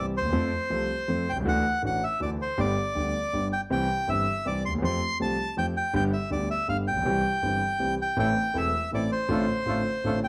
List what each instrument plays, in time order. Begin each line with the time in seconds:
Already playing: grand piano C2 C3 E3 G3 C4 G4
0.17 grand piano D2, bandoneon C5
0.25 grand piano D#2 E2
0.33 grand piano F2 F3 A3 C4 A4
0.70 grand piano C2 C3 F3 A3 C4 A4
1.08 grand piano F2 F3 A3 C4 A4
1.29 grand piano B1, bandoneon G5
1.36 grand piano C2
1.40 grand piano C#2
1.45 grand piano D2 D3 E3 A3 D4 F#4, bandoneon F#5
1.82 grand piano A1 A2 E3 A3 D4 F#4
1.86 bandoneon F#5
2.04 bandoneon E5
2.20 grand piano D2 D3 E3 A3 D4 F#4, bandoneon D5
2.42 bandoneon C5
2.58 grand piano G1 G2 D3 G3 B3 G4, bandoneon D5
2.95 grand piano D2 D3 G3 B3 G4
3.33 grand piano G1 G2 D3 G3 B3 G4
3.53 bandoneon G5
3.70 grand piano C2 C3 E3 G3 C4 G4, bandoneon G5
4.07 grand piano G1 G2 E3 G3 C4 G4, bandoneon E5
4.45 grand piano C2 C3 E3 G3 C4 G4, bandoneon D5
4.66 grand piano D2, bandoneon C6
4.73 grand piano D#2
4.78 grand piano E2
4.82 grand piano F2 F3 A3 C4 G4, bandoneon C6
5.20 grand piano C2 C3 F3 A3 C4 G4, bandoneon A5
5.57 grand piano F2 F3 A3 C4 G4, bandoneon G5
5.77 bandoneon G5
5.93 grand piano G1 G2 D3 G3 B3 G4, bandoneon G5
6.13 bandoneon E5
6.30 grand piano D2 D3 G3 B3 G4, bandoneon D5
6.51 bandoneon E5
6.68 grand piano G1 G2 D3 G3 B3 G4, bandoneon F5
6.88 grand piano A1, bandoneon G5
6.97 grand piano A#1
7.01 grand piano B1 G3 C4
7.05 grand piano C2 C3 E3 G4
7.42 grand piano G1 G2 E3 G3 C4 G4
7.79 grand piano C2 C3 E3 G3 C4 G4
8.02 bandoneon G5
8.17 grand piano A1 A2 E3 A3 C4 A4, bandoneon C4 E4 A4 G5
8.54 grand piano E1 E2 E3 A3 C4 A4, bandoneon C4 E4 A4 E5
8.92 grand piano A1 A2 E3 A3 C4 A4, bandoneon C4 E4 A4 D5
9.12 bandoneon C5
9.29 grand piano A1 A2 D3 A3 C4 F4, bandoneon A3 D4 F4 A4
9.66 grand piano A1 A2 D3 A3 C4 F4, bandoneon A3 D4 F4 A4
10.04 grand piano A1 A2 D3 A3 C4 F4, bandoneon A3 D4 F4 A4
10.24 bandoneon G5